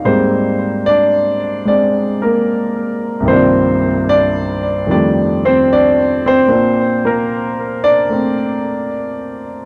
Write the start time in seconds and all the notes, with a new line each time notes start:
Already playing: D#4
0.05 G#2 G3 A#3 C4 C5
0.86 D4 D5
1.65 G#3 C4 D4 D5
2.22 A#3 A#4
3.20 C2 G2
3.25 D#3 F3 C5
3.30 A#3 C4 D4
4.09 D4 D5
4.87 F2 D#3 G3
4.91 A3 D4 D5
5.45 C4 C5
5.73 D4 D5
6.26 C4 C5
6.48 A#2 A#3 C4 D4
7.05 A#3 A#4
7.84 D4 D5
8.09 A3 C4